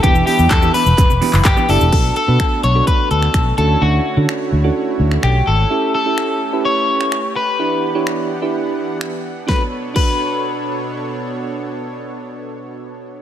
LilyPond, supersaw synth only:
\new Staff \with { instrumentName = "Supersaw synth" } { \time 4/4 \key b \minor \tempo 4 = 127 << { d'''1 | d'2.~ d'8 fis'8~ | fis'1 | g'1~ |
g'1 | <b, b d' a' cis''>1~ | <b, b d' a' cis''>1 | } \\ { <b' e'' g''>1 | <a b>2.~ <a b>8 <d e' cis''>8~ | <d e' cis''>1 | <a cis'>1 |
<e b d' fis''>1 | r1 | r1 | } >> }